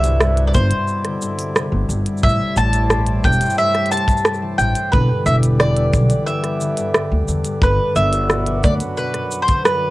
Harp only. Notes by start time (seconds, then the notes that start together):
0.04 G2
0.21 G2
0.54 C3
0.71 G2
1.05 D3
1.22 G2
1.56 C3
1.72 G2
1.89 G2
2.23 C3
2.40 G2
2.74 E3
2.91 G2
3.24 C3
3.41 G2
3.58 G2
3.91 C3
4.08 G2
4.42 E3
4.59 G2
4.92 D3
5.09 G2
5.26 G2
5.60 D3
5.77 G2
6.10 E3
6.27 G2
6.61 D3
6.78 G2
6.95 G2
7.28 D3
7.45 G2
7.79 D3
7.95 F#2
8.29 B2
8.46 F#2
8.63 F#2
8.97 B2
9.14 F#2
9.48 D3
9.65 F#2